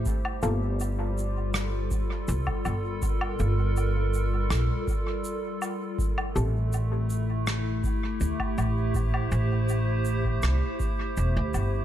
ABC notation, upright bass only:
X:1
M:4/4
L:1/16
Q:1/4=81
K:Gdor
V:1 name="Upright bass" clef=bass
z2 G,,,8 z2 C,, z G,,,2- | G,,,2 G,,,6 B,,, z6 z | z2 A,,,8 z2 D,, z A,,,2- | A,,,2 A,,,6 C,, z3 E,,, D,, G,,,2 |]